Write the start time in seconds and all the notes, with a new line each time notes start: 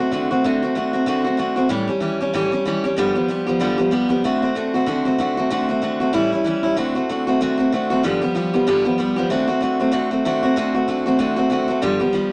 Already playing: F#4
0.00 A3 C4
0.11 D3 A3 C4 F#4
0.31 A3 C4 F#4
0.44 D3 A3 C4 F#4
0.62 A3 C4 F#4
0.75 D3 A3 C4 F#4
0.93 A3 C4 F#4
1.06 D3 A3 C4 F#4
1.24 A3 C4 F#4
1.37 D3 A3 C4 F#4
1.56 A3 C4 F#4
1.69 A2 E3 G3 C#4 G4
1.88 G3 C#4 G4
2.00 E3 G3 C#4 G4
2.21 G3 C#4 G4
2.33 A2 E3 G3 C#4 G4
2.52 G3 C#4 G4
2.65 E3 G3 C#4 G4
2.84 G3 C#4 G4
2.97 G2 D3 F3 G3 B3 G4
3.15 F3 G3 B3 G4
3.28 F3 G3 B3 G4
3.46 F3 G3 B3 G4
3.60 G2 D3 F3 G3 B3 G4
3.78 F3 G3 B3 G4
3.91 F3 G3 B3 G4
4.09 F3 G3 B3 G4
4.24 D3 A3 C4 F#4
4.42 A3 C4 F#4
4.55 D3 A3 C4 F#4
4.74 A3 C4 F#4
4.86 D3 A3 C4 F#4
5.05 A3 C4 F#4
5.18 D3 A3 C4 F#4
5.37 A3 C4 F#4
5.50 D3 A3 C4 F#4
5.69 A3 C4 F#4
5.82 D3 A3 C4 F#4
6.00 A3 C4 F#4
6.13 A2 E3 G3 C#4 E4
6.32 G3 C#4 E4
6.44 E3 G3 C#4 E4
6.63 G3 C#4 E4
6.77 D3 A3 C4 F#4
6.95 A3 C4 F#4
7.09 D3 A3 C4 F#4
7.27 A3 C4 F#4
7.41 D3 A3 C4 F#4
7.58 A3 C4 F#4
7.72 D3 A3 C4 F#4
7.90 A3 C4 F#4
8.03 G2 D3 F3 G3 B3 G4
8.22 F3 G3 B3 G4
8.35 F3 G3 B3 G4
8.54 F3 G3 B3 G4
8.67 G2 D3 F3 G3 B3 G4
8.85 F3 G3 B3 G4
8.98 F3 G3 B3 G4
9.16 F3 G3 B3 G4
9.30 D3 A3 C4 F#4
9.48 A3 C4 F#4
9.61 D3 A3 C4 F#4
9.80 A3 C4 F#4
9.92 D3 A3 C4 F#4
10.11 A3 C4 F#4
10.25 D3 A3 C4 F#4
10.43 A3 C4 F#4
10.56 D3 A3 C4 F#4
10.75 A3 C4 F#4
10.88 D3 A3 C4 F#4
11.06 A3 C4 F#4
11.19 D3 A3 C4 F#4
11.36 A3 C4 F#4
11.50 D3 A3 C4 F#4
11.68 A3 C4 F#4
11.82 G2 D3 F3 G3 B3 G4
12.00 F3 G3 B3 G4
12.13 F3 G3 B3 G4